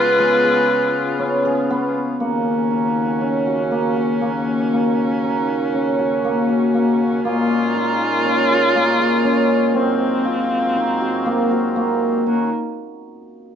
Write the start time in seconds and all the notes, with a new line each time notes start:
Already playing: C#3 G#3 B3 C#4 F4 G#4 B4
0.19 G#3
0.44 G#4
1.19 C#4
1.45 G#4
1.70 B3
2.20 D#2 C#3 A#3 C#4 F#4
2.71 D#4
3.21 C#4
3.46 F#4
3.71 A#3
3.96 F#4
4.21 A#3
4.73 A#3
5.24 D#4
5.74 C#4
5.99 F#4
6.25 A#3
6.49 F#4
6.74 A#3
7.23 A#2 G#3 A#3 C#4 F4
7.75 D#4
8.25 C#4
8.50 G#4
8.75 A#3
9.00 G#4
9.25 C#4
9.74 G#2 F#3 A#3 C4 F4
10.25 F4
10.76 D#4
11.01 F#4
11.26 A#3
11.51 F#4
11.76 A#3
12.26 D#3 A#3 C#4 D#4 F#4